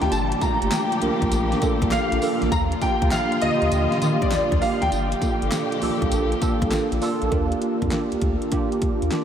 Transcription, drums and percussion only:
0.02 snare, closed hi-hat
0.12 closed hi-hat, tambourine
0.32 closed hi-hat
0.41 kick, closed hi-hat, tambourine
0.62 closed hi-hat
0.72 snare, clap, closed hi-hat, tambourine
0.92 closed hi-hat
1.02 closed hi-hat
1.22 kick, closed hi-hat
1.32 closed hi-hat, tambourine
1.52 snare, closed hi-hat
1.62 kick, closed hi-hat, tambourine
1.82 kick, closed hi-hat
1.91 snare, clap, closed hi-hat, tambourine
2.12 closed hi-hat
2.22 open hi-hat, tambourine
2.42 snare, closed hi-hat
2.52 kick, closed hi-hat, tambourine
2.72 closed hi-hat
2.81 kick, closed hi-hat, tambourine
3.02 kick, closed hi-hat
3.11 snare, clap, closed hi-hat, tambourine
3.32 closed hi-hat
3.42 closed hi-hat
3.62 closed hi-hat
3.72 closed hi-hat, tambourine
3.92 snare, closed hi-hat
4.02 closed hi-hat, tambourine
4.22 kick, closed hi-hat
4.31 snare, clap, closed hi-hat, tambourine
4.52 kick, closed hi-hat
4.62 open hi-hat, tambourine
4.82 snare, closed hi-hat
4.92 closed hi-hat, tambourine
5.12 closed hi-hat
5.22 kick, closed hi-hat, tambourine
5.42 closed hi-hat
5.52 snare, clap, closed hi-hat, tambourine
5.72 closed hi-hat
5.82 open hi-hat
6.02 kick, closed hi-hat
6.12 closed hi-hat, tambourine
6.32 closed hi-hat
6.42 kick, closed hi-hat, tambourine
6.62 kick, closed hi-hat
6.71 snare, clap, closed hi-hat, tambourine
6.92 closed hi-hat
7.02 open hi-hat, tambourine
7.22 closed hi-hat
7.32 kick, closed hi-hat
7.52 closed hi-hat
7.62 closed hi-hat
7.82 kick, closed hi-hat
7.91 snare, clap, closed hi-hat
8.12 closed hi-hat
8.22 kick, closed hi-hat
8.42 closed hi-hat
8.52 kick, closed hi-hat
8.72 closed hi-hat
8.82 kick, closed hi-hat
9.02 closed hi-hat
9.11 snare, clap, closed hi-hat

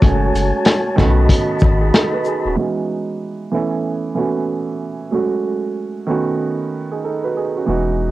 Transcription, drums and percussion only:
0.02 kick, closed hi-hat
0.36 closed hi-hat, shaker
0.65 cross-stick, snare, closed hi-hat
0.98 kick, snare, shaker
1.29 kick, closed hi-hat
1.60 kick, shaker
1.94 cross-stick, snare, closed hi-hat
2.25 shaker

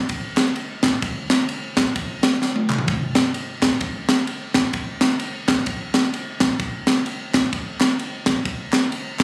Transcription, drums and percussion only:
0.09 kick, ride
0.37 snare, clap, ride
0.56 ride
0.83 kick, snare, clap, ride
1.02 kick, ride
1.30 snare, clap, ride
1.49 ride
1.77 kick, snare, clap, ride
1.96 kick, ride
2.23 snare, clap, ride
2.42 snare
2.56 high tom
2.69 clap, mid tom
2.78 floor tom
2.88 kick, ride
3.15 snare, clap, ride
3.34 ride
3.62 kick, snare, clap, ride
3.81 kick, ride
4.09 snare, clap, ride
4.27 ride
4.54 kick, snare, clap, ride
4.73 kick, ride
5.01 snare, clap, ride
5.20 ride
5.48 kick, snare, clap, ride
5.66 kick, ride
5.94 snare, clap, ride
6.14 ride
6.40 kick, snare, clap, ride
6.60 kick, ride
6.87 snare, clap, ride
7.06 ride
7.34 kick, snare, clap, ride
7.53 kick, ride
7.81 snare, clap, ride
7.99 ride
8.26 kick, snare, clap, ride
8.45 kick, ride
8.73 snare, clap, ride
8.92 ride
9.20 kick, snare, clap, ride

